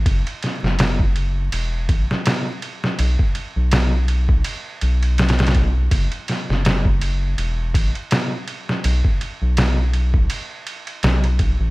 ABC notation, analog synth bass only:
X:1
M:4/4
L:1/16
Q:"Swing 16ths" 1/4=82
K:F#m
V:1 name="Analog synth bass" clef=bass
F,,, z2 F,,,4- F,,, E,,,2 A,,, z4 z | B,,, z2 B,,,4- B,,, z2 B,,,6 | F,,, z2 F,,,4- F,,, E,,,2 A,,, z4 z | B,,, z2 B,,,4- B,,, z4 B,,,3 A,,, |]